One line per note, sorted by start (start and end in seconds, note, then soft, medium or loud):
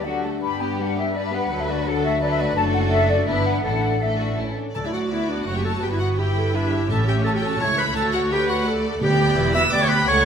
0.00 0.24 D2 soft
0.00 0.24 G4 medium
0.05 0.23 F#3 soft
0.05 0.24 A3 soft
0.05 1.49 D4 soft
0.05 0.23 D4 soft
0.05 0.23 F#4 soft
0.05 0.24 F#5 medium
0.23 0.42 A3 soft
0.23 0.42 F#4 soft
0.23 0.42 A4 soft
0.23 0.29 A5 soft
0.42 1.46 G2 soft
0.42 0.59 G3 soft
0.42 1.47 G3 soft
0.42 0.59 D4 soft
0.42 1.11 G4 soft
0.42 0.59 B4 soft
0.42 0.60 B5 medium
0.60 0.78 B3 soft
0.60 0.79 B3 soft
0.60 0.80 G4 soft
0.60 0.79 G5 medium
0.79 0.97 G3 soft
0.79 0.97 D4 soft
0.79 0.98 B4 soft
0.79 0.97 F#5 medium
0.96 1.14 B3 soft
0.96 1.15 B3 soft
0.96 1.16 G4 soft
0.96 1.15 E5 medium
1.14 1.31 G3 soft
1.14 1.31 D4 soft
1.14 1.86 B4 medium
1.14 1.32 B4 soft
1.14 1.24 D5 medium
1.25 1.33 E5 medium
1.32 1.50 B3 soft
1.32 1.51 G4 soft
1.32 1.60 F#5 medium
1.50 2.54 D2 medium
1.50 1.67 F#3 soft
1.50 2.55 F#3 soft
1.50 2.54 D4 soft
1.50 1.67 D4 soft
1.50 1.67 A4 soft
1.61 1.69 E5 medium
1.68 1.86 A3 soft
1.68 1.85 F#4 soft
1.68 1.86 F#4 soft
1.68 1.87 D5 medium
1.86 2.04 F#3 soft
1.86 2.03 D4 soft
1.86 2.04 A4 soft
1.86 2.21 A4 medium
1.86 2.03 F#5 medium
2.02 2.21 A3 soft
2.02 2.20 F#4 soft
2.02 2.21 F#4 soft
2.02 2.21 E5 medium
2.21 2.38 F#3 soft
2.21 2.38 D4 soft
2.21 2.37 A4 soft
2.21 2.56 B4 medium
2.21 2.30 D5 medium
2.32 2.39 E5 medium
2.38 2.56 A3 medium
2.38 2.55 F#4 soft
2.38 2.56 F#4 medium
2.38 2.56 D5 medium
2.56 3.24 F#1 medium
2.56 3.24 F#3 medium
2.56 3.24 A3 medium
2.56 3.24 D4 medium
2.56 3.24 F#4 medium
2.56 3.28 A4 medium
2.56 2.63 A5 medium
2.74 2.80 F#5 medium
2.91 3.09 E5 medium
3.10 3.28 D5 medium
3.28 3.64 G1 medium
3.28 3.65 E3 medium
3.28 3.64 B3 medium
3.28 3.64 D4 medium
3.28 3.64 D4 soft
3.28 3.64 E4 medium
3.28 3.64 B4 medium
3.28 3.46 E5 medium
3.45 3.62 F#5 medium
3.63 4.37 A1 soft
3.63 4.16 A2 medium
3.63 4.01 E3 soft
3.63 4.01 A3 soft
3.63 4.01 D4 soft
3.63 4.00 D4 soft
3.63 4.01 E4 soft
3.63 4.55 A4 soft
3.63 4.00 F#5 medium
4.01 4.37 E3 soft
4.01 4.38 A3 soft
4.01 4.37 D4 soft
4.01 4.38 D4 soft
4.01 4.19 A4 medium
4.01 4.39 E5 medium
4.21 4.39 F#4 soft
4.37 4.45 A1 soft
4.37 4.56 E3 soft
4.37 4.46 A3 soft
4.37 4.56 C#4 soft
4.37 4.57 C#4 soft
4.37 4.57 E4 soft
4.58 4.76 D4 soft
4.75 5.43 D2 soft
4.75 5.26 D3 medium
4.75 5.09 F#3 soft
4.75 6.15 F#4 soft
4.75 4.87 A4 medium
4.75 5.43 D5 soft
4.75 4.79 A5 soft
4.85 4.94 E4 medium
4.85 4.88 E5 soft
4.93 5.11 F#4 soft
4.93 5.01 F#5 soft
5.10 5.48 B3 soft
5.10 5.30 E4 medium
5.10 5.28 E5 soft
5.29 5.46 D4 medium
5.29 5.47 D5 soft
5.46 5.82 F#1 soft
5.46 5.82 F#2 soft
5.46 5.83 A3 soft
5.46 5.55 F#4 medium
5.46 5.83 C#5 soft
5.46 5.56 F#5 soft
5.55 5.64 G4 medium
5.55 5.64 G5 soft
5.64 5.73 A4 medium
5.64 5.82 A5 soft
5.82 6.87 G1 soft
5.82 6.87 G2 soft
5.82 6.18 B3 soft
5.82 5.87 G4 medium
5.82 6.55 B4 soft
5.82 5.92 G5 soft
5.91 6.02 E4 medium
5.91 6.00 E5 soft
6.00 6.20 F#4 medium
6.00 6.08 F#5 medium
6.18 6.54 E4 soft
6.18 6.36 G4 soft
6.18 6.53 G4 medium
6.18 6.53 G5 soft
6.35 6.54 A4 soft
6.53 6.89 D4 soft
6.53 6.91 E4 medium
6.53 6.72 B4 soft
6.53 6.89 E5 soft
6.53 6.90 E5 soft
6.71 7.25 G4 soft
6.89 7.60 A1 soft
6.89 7.60 A2 medium
6.89 7.39 A2 medium
6.89 7.58 C#4 soft
6.89 7.06 A4 medium
6.89 7.25 E5 soft
6.89 6.97 A5 medium
7.07 7.23 G4 medium
7.07 7.15 G5 medium
7.23 7.60 F#4 soft
7.23 7.35 A4 medium
7.23 8.66 C#5 medium
7.23 7.30 A5 medium
7.34 7.43 G4 medium
7.34 7.43 G5 medium
7.42 7.60 A4 medium
7.42 7.61 A5 medium
7.59 7.95 C#2 medium
7.59 8.65 A3 medium
7.59 7.96 E4 soft
7.59 7.77 C#5 medium
7.59 7.78 C#6 medium
7.78 7.86 B4 medium
7.78 7.96 B5 medium
7.95 8.99 D2 medium
7.95 8.30 F#4 medium
7.95 8.16 A4 medium
7.95 8.03 A5 medium
8.13 8.31 F#4 medium
8.13 8.20 F#5 medium
8.31 8.51 G4 loud
8.31 8.67 B4 medium
8.31 8.48 G5 medium
8.48 8.67 F#4 medium
8.48 8.66 F#5 medium
8.66 9.01 A3 medium
8.66 9.01 A4 medium
8.66 9.01 D5 medium
9.00 9.34 D2 medium
9.00 9.35 D2 medium
9.00 9.51 D3 medium
9.00 10.04 B3 medium
9.00 9.35 G4 medium
9.00 9.51 G4 medium
9.00 9.69 D5 medium
9.00 9.50 G5 medium
9.37 9.71 E1 medium
9.37 9.72 E2 medium
9.37 9.55 E4 medium
9.54 9.72 F#4 medium
9.54 9.63 E5 medium
9.54 9.72 E6 medium
9.72 10.07 D2 medium
9.72 10.08 D2 medium
9.72 10.07 G4 medium
9.72 9.83 D5 medium
9.72 10.08 G5 medium
9.72 9.81 D6 medium
9.81 9.90 C#5 medium
9.81 9.90 C#6 medium
9.89 10.07 B4 medium
9.89 10.08 B5 medium
10.07 10.25 C#2 medium
10.07 10.25 A3 medium
10.07 10.25 A4 medium
10.07 10.25 C#5 loud
10.07 10.25 F#5 medium
10.07 10.25 C#6 medium